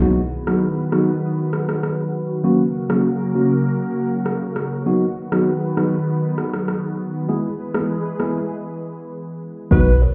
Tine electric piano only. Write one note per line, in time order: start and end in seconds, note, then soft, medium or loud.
0.01 0.19 F#3 medium
0.01 0.19 B3 medium
0.01 0.19 D#4 medium
0.01 0.19 F#4 medium
0.47 0.64 F#3 medium
0.47 0.64 B3 medium
0.47 0.64 D#4 medium
0.47 0.64 F#4 medium
0.92 1.10 F#3 medium
0.92 1.10 B3 medium
0.92 1.10 D#4 medium
0.92 1.10 F#4 medium
2.44 2.62 F#3 medium
2.44 2.62 A#3 medium
2.44 2.62 C#4 medium
2.44 2.62 F#4 loud
2.90 3.07 F#3 medium
2.90 3.07 A#3 medium
2.90 3.07 C#4 medium
2.90 3.07 F#4 medium
3.35 3.53 F#3 medium
3.35 3.53 A#3 medium
3.35 3.53 C#4 medium
3.35 3.53 F#4 medium
4.86 5.04 F#3 medium
4.86 5.04 B3 medium
4.86 5.04 D#4 medium
4.86 5.04 F#4 loud
5.32 5.49 F#3 medium
5.32 5.49 B3 medium
5.32 5.49 D#4 medium
5.32 5.49 F#4 medium
5.77 5.95 F#3 medium
5.77 5.95 B3 medium
5.77 5.95 D#4 medium
5.77 5.95 F#4 medium
7.28 7.46 G#3 medium
7.28 7.47 B3 medium
7.28 7.47 E4 medium
7.28 7.47 G#4 loud
7.75 7.92 G#3 medium
7.75 7.92 B3 medium
7.75 7.92 E4 medium
7.75 7.92 G#4 medium
8.19 8.37 G#3 medium
8.19 8.37 B3 medium
8.19 8.38 E4 medium
8.19 8.38 G#4 medium
9.71 9.89 F#3 medium
9.71 9.89 B3 medium
9.71 9.89 D#4 medium
9.71 9.89 F#4 loud